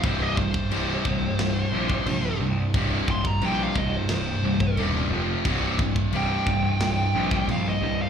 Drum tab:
CC |x---x---x---x---|x---x---x---x---|x---x---x---x---|
SD |--------o-------|--------o-------|--------o-------|
BD |o-oo--o----o----|o-oo--o----o----|o-oo--o----o----|